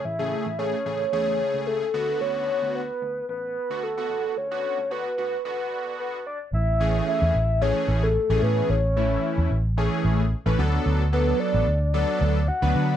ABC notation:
X:1
M:4/4
L:1/16
Q:1/4=111
K:A
V:1 name="Soft synth lead"
e4 c4 c4 A4 | c4 B4 B4 A4 | c4 B4 B4 B2 d2 | e4 e4 c3 A3 B2 |
c6 z8 z2 | z2 B2 d4 d4 f4 |]
V:2 name="Analog polysynth"
z [C,A,G]2 z [C,A,G] z [C,A,G] z [C,A,G]4- [C,A,G] z [D,B,F]2- | [D,B,F]4 z6 z [D,B,F] z [D,B,F]3 | z [D,B,F]2 z [D,B,F] z [D,B,F] z [D,B,F]4- [D,B,F] z3 | z2 [E,A,CG]4 z2 [E,A,CG]3 z2 [E,A,CG]3 |
z2 [E,A,CE]4 z2 [E,A,CG]3 z2 [E,A,CB] [F,B,DA]2- | [F,B,DA] z [F,B,DA]4 z2 [F,B,DA]3 z2 [F,B,DB]3 |]
V:3 name="Fingered electric bass" clef=bass
A,,,3 A,,,3 A,,,2 E,,3 C,,3 D,,2 | D,,3 D,,3 D,,2 A,,,3 D,,3 A,,,2 | D,,3 D,,3 D,,2 A,,,3 D,, F,,,2 G,,,2 | A,,,4- A,,, E,, A,,,4 A,,,3 A,,, A,,2 |
A,,,4- A,,, E,, A,,,4 A,,,3 A,,, D,,2 | D,,4- D,, A,,, D,,4 D,,3 D,, D,2 |]